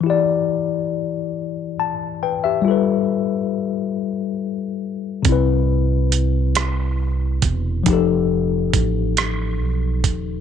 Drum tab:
HH |------|------|x-xx-x|x-xx-x|
SD |------|------|---r--|---r--|
BD |------|------|o----o|o-o--o|